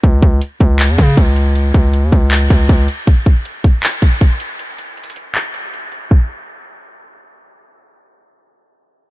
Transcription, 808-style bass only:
X:1
M:4/4
L:1/16
Q:1/4=158
K:C#m
V:1 name="808-style bass" clef=bass
C,,2 C,,2 z2 C,,3 E,, C,2 C,,4- | C,,2 C,,3 D,, C,,4 C,,2 C,,2 z2 | z16 | z16 |
z16 | z16 |]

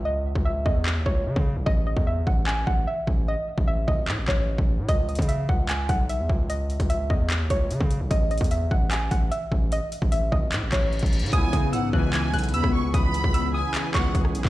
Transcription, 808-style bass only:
X:1
M:4/4
L:1/16
Q:1/4=149
K:C#m
V:1 name="808-style bass" clef=bass
C,,3 C,,3 E,,3 D,, C,,2 C, C,2 B,,, | A,,,3 E,,3 A,,,4 A,,,2 z2 A,,,2- | A,,, z2 A,,,3 G,,,2 A,, G,,, A,,,3 A,,,2 A,, | C,,3 C,3 C,,4 B,,,3 E,, C,,2- |
C,,3 C,,3 E,,3 D,, C,,2 C, C,2 B,,, | A,,,3 E,,3 A,,,4 A,,,2 z2 A,,,2- | A,,, z2 A,,,3 G,,,2 A,, G,,, A,,,3 A,,,2 A,, | C,,2 C,2 G,,2 C,,4 B,,,2 E,, C,,3 |
C,,3 C,,4 z3 C,,2 C,,2 B,,, B,,, |]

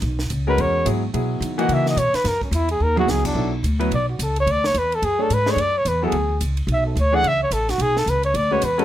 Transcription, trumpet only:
X:1
M:4/4
L:1/8
Q:"Swing" 1/4=216
K:F#mix
V:1 name="Trumpet"
z3 B c2 z2 | z3 f e d c B | A C E G A F G =D- | [K:Bdor] D z3 d F A c |
d c B A G A B c | d c B G3 z2 | e A c f e c A F | G A B c d c B A |]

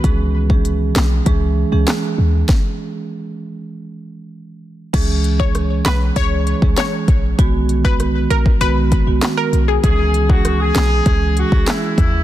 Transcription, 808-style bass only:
X:1
M:4/4
L:1/16
Q:1/4=98
K:C#dor
V:1 name="808-style bass" clef=bass
C,,6 B,,,2 C,,3 C,, z2 D,,2 | z16 | C,,6 B,,,2 C,,3 C,, z2 A,,,2 | B,,,6 A,,,2 B,,,3 B,,, z2 B,,,2 |
C,,6 B,,,2 C,,3 C,, z2 D,,2 |]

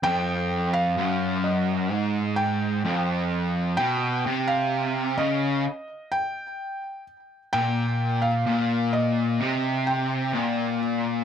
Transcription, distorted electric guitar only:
X:1
M:4/4
L:1/8
Q:1/4=64
K:Fdor
V:1 name="Distorted electric guitar" clef=bass
F,,2 ^F,,2 A,,2 =F,,2 | =B,, C,2 _D, z4 | B,,2 B,,2 C,2 B,,2 |]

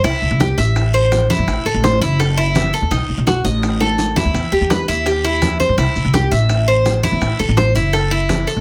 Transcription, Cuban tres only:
X:1
M:4/4
L:1/8
Q:1/4=167
K:Clyd
V:1 name="Cuban tres"
E2 G e2 c2 E- | E A c E A E2 A | ^D2 F ^d2 A2 E- | E G B E G E2 c |
E2 G e2 c2 E- | E A c E A E2 A |]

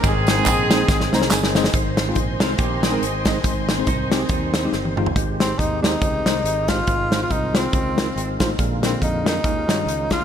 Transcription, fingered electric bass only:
X:1
M:4/4
L:1/8
Q:"Swing" 1/4=140
K:Ab
V:1 name="Fingered electric bass" clef=bass
A,,,2 B,,,2 A,,, C,, G,,,2 | A,,,2 B,,, C,, B,,,2 A,,,2 | A,,,2 C,,2 E,,2 G,,,2 | A,,,2 E,,2 D,, C,, A,,,2 |
A,,,2 C,,2 D,,2 A,,, =A,,, | B,,,2 F,,2 E,, G,, D,, =D,, |]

